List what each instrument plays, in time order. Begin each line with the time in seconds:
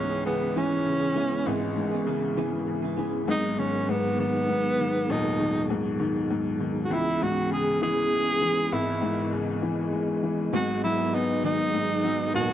Already playing: upright piano C#2 G#2, tonewheel organ E3 B3 C#4 G#4, clean electric guitar B3 E4, tenor saxophone C#4
0.10 clean electric guitar B3 E4 G#4
0.26 upright piano C#3, clean electric guitar G#3 B3 E4 G#4, tenor saxophone B3
0.56 clean electric guitar C#3 G#3 B3 E4 G#4, upright piano E3, tenor saxophone C#4
0.71 clean electric guitar B3 E4 G#4
0.86 upright piano C#3
1.01 clean electric guitar B3 E4 G#4
1.16 upright piano E3, clean electric guitar G#3 B3 E4 G#4
1.46 upright piano G#1, clean electric guitar C#3 G#3 B3 E4 G#4, tenor saxophone G#3
1.62 clean electric guitar B3 E4 G#4
1.76 upright piano G#2
1.92 clean electric guitar B3 E4 G#4
2.06 upright piano C#3, clean electric guitar G#3 B3 E4 G#4
2.37 clean electric guitar C#3 G#3 B3 E4 G#4, upright piano E3
2.52 clean electric guitar B3 E4 G#4
2.68 upright piano C#3
2.82 clean electric guitar B3 E4 G#4
2.97 upright piano E3, clean electric guitar G#3 B3 E4 G#4
3.27 upright piano G#1 G#2, tonewheel organ F#3 B3 D#4 G#4, tenor saxophone D#4
3.58 upright piano D#3, tenor saxophone C#4
3.89 upright piano G#2, tenor saxophone B3
4.18 upright piano D#3, tenor saxophone B3
4.48 upright piano G#2
4.79 upright piano D#3
5.09 upright piano D#1 D#2, tenor saxophone D#4
5.40 upright piano D#3
5.70 upright piano G#2
6.00 upright piano D#3
6.30 upright piano G#2
6.60 upright piano D#3
6.85 tenor saxophone F#4
6.90 upright piano C#2, tonewheel organ E3 B3 C#4, tenor saxophone E4
7.22 upright piano G#2, tenor saxophone F#4
7.51 upright piano C#3, tenor saxophone G#4
7.82 upright piano E3, tenor saxophone G#4
8.12 upright piano G#3
8.42 upright piano E3
8.72 upright piano G#1, tenor saxophone E4, tonewheel organ D#5
9.02 upright piano G#2
9.32 upright piano C#3
9.62 upright piano E3
9.92 upright piano G#3
10.23 upright piano E3
10.53 upright piano G#1 G#2, clean electric guitar G#2 D#3 F#3 B3 D#4 G#4, tonewheel organ F#3, tenor saxophone F#4
10.67 clean electric guitar B3 D#4 G#4
10.83 upright piano F#3, tenor saxophone E4
10.98 clean electric guitar F#3 B3 D#4 G#4
11.13 clean electric guitar F#3 B3 D#4 G#4, upright piano B3, tenor saxophone D#4
11.43 clean electric guitar G#2 D#3 F#3 B3 D#4 G#4, upright piano D#3, tenor saxophone D#4
11.58 clean electric guitar F#3 B3 D#4 G#4
11.74 upright piano G#2
11.89 clean electric guitar F#3 B3 D#4 G#4
12.04 upright piano F#3, clean electric guitar F#3 B3 D#4 G#4
12.34 upright piano D#1 D#2, clean electric guitar G#2 D#3 F#3 B3 D#4 G#4, tenor saxophone F#4, tonewheel organ A#4